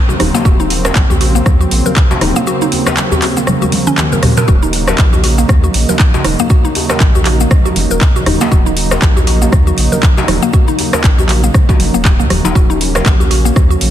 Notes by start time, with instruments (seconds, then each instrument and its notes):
Already playing: analog synth pad C#3 F#3 A#3 C4
0.09 synth arpeggio sound F#4, djembe tone, high conga, low conga, cabasa
0.19 sub bass D#1, synth arpeggio sound D#4, cross-stick, open hi-hat, muted conga, high conga, djembe bass
0.34 synth arpeggio sound A#3, djembe slap, high conga, cabasa
0.45 sub bass D#1, synth arpeggio sound F#4, kick, djembe tone, cabasa
0.60 synth arpeggio sound D#4, muted conga, cabasa
0.70 open hi-hat
0.85 synth arpeggio sound A#4, cross-stick, djembe slap, muted conga, cabasa
0.95 sub bass A#1, kick, clap, djembe tone, high conga, cabasa
1.10 synth arpeggio sound F#4, muted conga, djembe bass, cabasa
1.21 synth arpeggio sound F#4, open hi-hat
1.35 synth arpeggio sound A#3, muted conga, djembe tone, cabasa
1.46 sub bass D#2, kick, cross-stick, high conga, cabasa
1.61 synth arpeggio sound F#4, cabasa
1.71 sub bass A#1, open hi-hat, muted conga
1.86 synth arpeggio sound A#4, djembe tone, high conga, cabasa
1.96 kick, clap, muted conga, cabasa
2.11 synth arpeggio sound F#4, djembe slap, low conga, cabasa
2.21 sub bass D#1, synth arpeggio sound D#4, cross-stick, open hi-hat, muted conga, high conga, djembe tone
2.36 synth arpeggio sound A#3, cabasa
2.47 synth arpeggio sound F#4, cabasa
2.61 synth arpeggio sound D#4, muted conga, cabasa
2.72 open hi-hat, djembe tone
2.86 synth arpeggio sound A#4, cross-stick, muted conga, djembe slap, cabasa
2.97 clap, high conga, cabasa
3.12 synth arpeggio sound F#4, muted conga, djembe tone, djembe bass, cabasa
3.22 synth arpeggio sound F#4, clap, open hi-hat
3.37 synth arpeggio sound A#3, muted conga, cabasa
3.47 cross-stick, high tom, high conga, low conga, cabasa
3.62 synth arpeggio sound F#4, high tom, djembe tone, cabasa
3.72 open hi-hat, high tom, muted conga, high conga
3.87 synth arpeggio sound C#4, mid tom, cabasa
3.98 clap, mid tom, muted conga, djembe tone, cabasa
4.12 synth arpeggio sound A#4, high conga, low conga, cabasa
4.23 cross-stick, mid tom, open hi-hat, muted conga, high conga, djembe bass
4.36 synth arpeggio sound A#4, mid tom, djembe slap, high conga, cabasa
4.48 sub bass D#1, analog synth pad D#4, synth arpeggio sound F#4, kick, cabasa
4.62 synth arpeggio sound D#4, muted conga, djembe tone, cabasa
4.73 open hi-hat
4.88 synth arpeggio sound A#4, cross-stick, djembe slap, muted conga, cabasa
4.98 sub bass A#1, kick, clap, djembe tone, high conga, cabasa
5.13 synth arpeggio sound F#4, muted conga, djembe bass, cabasa
5.24 synth arpeggio sound F#4, open hi-hat
5.38 synth arpeggio sound A#3, muted conga, cabasa
5.48 sub bass D#2, kick, cross-stick, djembe tone, high conga, cabasa
5.64 synth arpeggio sound F#4, cabasa
5.73 sub bass A#1, open hi-hat, muted conga
5.89 synth arpeggio sound A#4, high conga, djembe tone, cabasa
5.99 kick, clap, muted conga, cabasa
6.14 synth arpeggio sound F#4, djembe slap, low conga, cabasa
6.24 sub bass D#1, synth arpeggio sound D#4, cross-stick, open hi-hat, muted conga, high conga
6.39 synth arpeggio sound A#3, djembe tone, cabasa
6.50 synth arpeggio sound F#4, kick, cabasa
6.64 synth arpeggio sound D#4, muted conga, cabasa
6.75 open hi-hat, djembe tone
6.90 synth arpeggio sound A#4, cross-stick, djembe slap, muted conga, cabasa
7.00 sub bass A#1, kick, clap, high conga, cabasa
7.15 synth arpeggio sound F#4, muted conga, djembe bass, cabasa
7.26 synth arpeggio sound F#4, clap, open hi-hat, djembe tone
7.40 synth arpeggio sound A#3, muted conga, cabasa
7.51 kick, cross-stick, high conga, low conga, cabasa
7.65 synth arpeggio sound F#4, djembe tone, cabasa
7.76 sub bass F#1, open hi-hat, muted conga, high conga
7.91 sub bass D#1, synth arpeggio sound A#4, cabasa
8.01 kick, clap, cabasa
8.16 synth arpeggio sound F#4, djembe tone, high conga, low conga, cabasa
8.26 sub bass D#1, synth arpeggio sound D#4, cross-stick, open hi-hat, muted conga, high conga, djembe bass
8.41 synth arpeggio sound A#3, djembe slap, high conga, cabasa
8.52 sub bass D#1, synth arpeggio sound F#4, kick, djembe tone, cabasa
8.66 synth arpeggio sound D#4, muted conga, cabasa
8.77 open hi-hat
8.91 synth arpeggio sound A#4, cross-stick, djembe slap, muted conga, cabasa
9.02 sub bass A#1, kick, clap, high conga, djembe tone, cabasa
9.16 synth arpeggio sound F#4, muted conga, djembe bass, cabasa
9.27 synth arpeggio sound F#4, open hi-hat
9.42 synth arpeggio sound A#3, muted conga, djembe tone, cabasa
9.52 sub bass D#2, kick, cross-stick, high conga, cabasa
9.67 synth arpeggio sound F#4, cabasa
9.77 sub bass A#1, open hi-hat, muted conga
9.92 synth arpeggio sound A#4, djembe tone, high conga, cabasa
10.03 kick, clap, muted conga, cabasa
10.17 synth arpeggio sound F#4, djembe slap, low conga, cabasa
10.28 sub bass D#1, synth arpeggio sound D#4, cross-stick, open hi-hat, muted conga, djembe tone, high conga
10.43 synth arpeggio sound A#3, cabasa
10.53 synth arpeggio sound F#4, kick, cabasa
10.68 synth arpeggio sound D#4, muted conga, cabasa
10.79 open hi-hat, djembe tone
10.93 synth arpeggio sound A#4, cross-stick, djembe slap, muted conga, cabasa
11.04 sub bass A#1, kick, clap, high conga, cabasa
11.18 synth arpeggio sound F#4, muted conga, djembe tone, djembe bass, cabasa
11.29 synth arpeggio sound F#4, clap, open hi-hat
11.43 synth arpeggio sound A#3, muted conga, cabasa
11.54 kick, cross-stick, high conga, low conga, cabasa
11.69 synth arpeggio sound F#4, kick, djembe slap, djembe tone, cabasa
11.80 sub bass F#1, open hi-hat, muted conga, high conga
11.94 sub bass D#1, synth arpeggio sound A#3, cabasa
12.05 kick, clap, muted conga, djembe tone, cabasa
12.19 sub bass D#2, synth arpeggio sound A#3, high conga, low conga, cabasa
12.30 sub bass D#1, cross-stick, open hi-hat, muted conga, high conga, djembe bass
12.45 sub bass D#1, synth arpeggio sound D#4, djembe slap, high conga, cabasa
12.55 sub bass D#1, analog synth pad C#4, synth arpeggio sound F#4, kick, cabasa
12.70 synth arpeggio sound D#4, muted conga, djembe tone, cabasa
12.81 open hi-hat
12.95 synth arpeggio sound A#4, cross-stick, muted conga, djembe slap, cabasa
13.06 sub bass A#1, kick, clap, high conga, djembe tone, cabasa
13.20 synth arpeggio sound F#4, muted conga, djembe bass, cabasa
13.31 synth arpeggio sound F#4, open hi-hat
13.45 synth arpeggio sound A#3, muted conga, cabasa
13.56 sub bass D#2, kick, cross-stick, high conga, djembe tone, cabasa
13.70 synth arpeggio sound F#4, cabasa
13.81 sub bass A#1, open hi-hat, muted conga